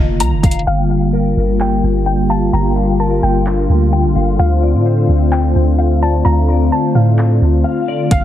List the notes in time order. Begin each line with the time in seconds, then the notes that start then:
Already playing: F1 D3 D#3 A#3 F4 D#5 F5 A#5
0.20 C2 A#5, closed hi-hat
0.32 F1
0.43 F1 F5, kick, closed hi-hat
0.51 closed hi-hat
0.59 closed hi-hat
0.67 G1 D3 G3 A#3 F4 F5 G5, closed hi-hat
0.75 closed hi-hat
0.82 closed hi-hat
0.90 F5
1.13 A#4
1.37 G1
1.60 G5, clap
1.83 G1
2.06 G5
2.29 F5 A5
2.53 G1 G5 A#5
2.76 F5
3.00 A#4 A5
3.23 G1 G5, open hi-hat
3.46 clap
3.69 D2
3.93 G5
4.04 A#1
4.16 G1 F5
4.39 D2 A3 C4 F5
4.63 D5
4.74 A2
4.86 C5
5.09 D2
5.32 G5, clap
5.55 D2
5.79 F5
6.02 D5 A5
6.25 D2 F5 A#5
6.49 D5
6.72 C5 A5
6.95 A2 F5
7.18 clap
7.41 D2
7.64 F5
7.88 D5
8.11 G1 D3 G3 A#3 F4 F5, kick, closed hi-hat